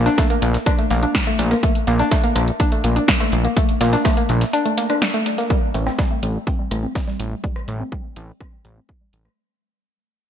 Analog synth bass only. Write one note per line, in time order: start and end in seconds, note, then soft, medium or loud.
0.42 0.57 A#1 medium
0.91 1.06 A#1 medium
1.39 1.54 A#1 medium
1.87 2.03 A#1 loud
2.36 2.51 A#1 medium
2.84 2.99 A#1 medium
3.32 3.48 A#1 medium
3.81 3.96 A#1 loud
4.29 4.45 A#1 medium
5.74 5.90 A1 loud
6.23 6.38 A1 medium
6.71 6.86 A1 medium
7.20 7.35 A1 medium
7.68 7.83 A1 loud
8.16 8.32 A1 medium
8.65 8.80 A1 medium
9.13 9.28 A1 medium